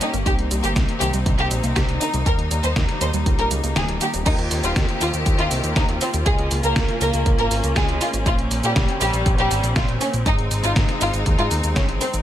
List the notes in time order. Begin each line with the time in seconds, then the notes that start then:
Already playing: A#3 C#4 G4
0.01 G3 D#4, closed hi-hat, cabasa
0.13 G1 A#3, closed hi-hat, cabasa
0.26 C2 D#3 C4 D#4 G4, kick, closed hi-hat, cabasa
0.39 C2, closed hi-hat
0.51 C2 G3, closed hi-hat, cabasa
0.63 G1 A#3 G4, closed hi-hat, cabasa
0.76 C2 D#3, kick, snare, closed hi-hat, cabasa
0.89 closed hi-hat
1.01 C2 D#3 G4, closed hi-hat, cabasa
1.13 C2 G3, closed hi-hat, cabasa
1.26 C2 D#3, kick, closed hi-hat, cabasa
1.39 C2 G4, closed hi-hat
1.51 A#1 G3, closed hi-hat, cabasa
1.64 C2 A#3, closed hi-hat, cabasa
1.76 C2 D#3 G4, kick, snare, closed hi-hat, cabasa
1.89 C2, closed hi-hat
2.01 D#3 D#4, closed hi-hat, cabasa
2.14 C2 G3, closed hi-hat, cabasa
2.26 D#2 D#3 G3 A#4, kick, closed hi-hat, cabasa
2.39 D#2, closed hi-hat
2.51 D#2 G3, closed hi-hat, cabasa
2.64 D#2 A#3 C5, closed hi-hat, cabasa
2.76 D#2 D#3, kick, snare, closed hi-hat, cabasa
2.89 snare, closed hi-hat
3.01 D#2 D#3 C5, closed hi-hat, cabasa
3.14 D#2 G3, closed hi-hat, cabasa
3.26 C#2 D#3, kick, closed hi-hat, cabasa
3.39 A#1 A#4, closed hi-hat
3.51 C#2 G3, closed hi-hat, cabasa
3.63 C#2 A#3, closed hi-hat, cabasa
3.76 D#1 D#3 G#4, snare, closed hi-hat, cabasa
3.88 D#1, closed hi-hat
4.01 D#3 G4, closed hi-hat, cabasa
4.14 D#1 G3, closed hi-hat, cabasa
4.26 D#2 D#3 A#3 C4 D#4 F4 G4, kick, closed hi-hat, crash, cabasa
4.39 D#2, closed hi-hat
4.51 D#2, open hi-hat, cabasa
4.63 D#1 F4, closed hi-hat, cabasa
4.76 D#2, kick, snare, closed hi-hat, cabasa
4.89 closed hi-hat
5.01 D#2 F4, open hi-hat, cabasa
5.13 D#2, closed hi-hat, cabasa
5.26 D#2, kick, closed hi-hat, cabasa
5.38 D#2 F4, closed hi-hat
5.51 C2, open hi-hat, cabasa
5.64 D#2, closed hi-hat, cabasa
5.76 D#2 D#4, kick, snare, closed hi-hat, cabasa
5.89 D#2, closed hi-hat
6.01 C4, open hi-hat, cabasa
6.14 D#2, closed hi-hat, cabasa
6.26 C#2 G#3 C#4 G#4, kick, closed hi-hat, cabasa
6.39 C#2, closed hi-hat
6.51 C#2, open hi-hat, cabasa
6.63 C#2 A#3 A#4, closed hi-hat, cabasa
6.76 C#2, kick, snare, closed hi-hat, cabasa
6.89 snare, closed hi-hat
7.01 C#2 A#3 A#4, open hi-hat, cabasa
7.14 C#2, closed hi-hat, cabasa
7.26 C#2, kick, closed hi-hat, cabasa
7.39 G#1 A#3 A#4, closed hi-hat
7.51 G#1, open hi-hat, cabasa
7.64 C#2, closed hi-hat, cabasa
7.76 C#2 G#3 G#4, kick, snare, closed hi-hat, cabasa
7.89 C#2, closed hi-hat
8.01 F4, open hi-hat, cabasa
8.14 G#1, closed hi-hat, cabasa
8.26 A#1 C4 F4, kick, closed hi-hat, cabasa
8.39 A#1, closed hi-hat
8.51 A#1, open hi-hat, cabasa
8.64 A#2 G3 G4, closed hi-hat, cabasa
8.76 A#1, kick, snare, closed hi-hat, cabasa
8.89 closed hi-hat
9.01 A#1 G3 G4, open hi-hat, cabasa
9.14 A#1, closed hi-hat, cabasa
9.26 A#1, kick, closed hi-hat, cabasa
9.38 A#1 G3 G4, closed hi-hat
9.51 G#1, open hi-hat, cabasa
9.64 A#1, closed hi-hat, cabasa
9.76 A#1 F4, kick, snare, closed hi-hat, cabasa
9.88 A#1, closed hi-hat
10.01 C#4, open hi-hat, cabasa
10.14 A#1, closed hi-hat, cabasa
10.26 G#1 G#3 D#4, kick, closed hi-hat, cabasa
10.39 G#1, closed hi-hat
10.51 G#1, open hi-hat, cabasa
10.64 G#1 F4, closed hi-hat, cabasa
10.76 G#1, kick, snare, closed hi-hat, cabasa
10.89 snare, closed hi-hat
11.01 G#1 F4, open hi-hat, cabasa
11.14 G#1, closed hi-hat, cabasa
11.26 D#2, kick, closed hi-hat, cabasa
11.39 G#2 F4, closed hi-hat
11.51 D#2, open hi-hat, cabasa
11.64 D#2, closed hi-hat, cabasa
11.76 G#1 C#4, kick, snare, closed hi-hat, cabasa
11.89 G#1, closed hi-hat
12.01 C4, open hi-hat, cabasa
12.14 G#1, closed hi-hat, cabasa